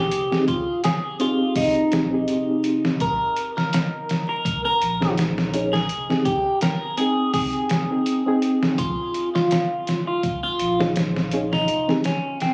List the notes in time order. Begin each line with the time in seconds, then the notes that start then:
Already playing: G4
0.12 F1, closed hi-hat
0.31 C4 D#4 G4 G#4, snare
0.48 F4, kick, closed hi-hat
0.84 G#4, snare, closed hi-hat
1.20 C4 D#4 F4 G4 G#4, closed hi-hat
1.56 F1 D#4, kick, open hi-hat
1.75 closed hi-hat
1.92 A#1 C4 D#4 G4 G#4, snare, closed hi-hat
2.11 C4 D#4 G4 G#4
2.28 F1, closed hi-hat
2.64 closed hi-hat
2.85 snare
3.00 A#1 A#4, kick, closed hi-hat
3.37 closed hi-hat
3.57 A#4, snare
3.73 snare, closed hi-hat
4.09 snare, closed hi-hat
4.29 A#4
4.45 kick, closed hi-hat
4.65 A#4
4.82 A#1, closed hi-hat
5.01 C#4 D#4 G#4 C5, snare
5.18 snare, closed hi-hat
5.38 snare
5.54 C#4 D#4 G#4 C#5, closed hi-hat
5.73 G#4, snare
5.89 F1, closed hi-hat
6.09 C4 D#4 G4 G#4, snare
6.25 G4, kick, closed hi-hat
6.61 A#4, snare, closed hi-hat
6.97 C4 D#4 G#4 G5, closed hi-hat
7.34 F1 G#4, kick, open hi-hat
7.53 closed hi-hat
7.69 F1, snare, closed hi-hat
7.90 C4 D#4 G#4 G5
8.06 closed hi-hat
8.26 C4 D#4 G#4 G5
8.42 closed hi-hat
8.63 snare
8.78 A#1 F4, kick, closed hi-hat
9.14 closed hi-hat
9.35 F4, snare
9.51 snare, closed hi-hat
9.87 snare, closed hi-hat
10.07 F4
10.23 kick, closed hi-hat
10.43 F4
10.60 A#1, closed hi-hat
10.80 C#4 D#4 G#4 C5, snare
10.96 snare, closed hi-hat
11.16 snare
11.31 C#4 D#4 G#4 C#5, closed hi-hat
11.53 D#4, snare
11.68 F1, closed hi-hat
11.88 C4 D#4 G4 G#4, snare
12.04 C#4, snare, closed hi-hat
12.40 C4, snare, closed hi-hat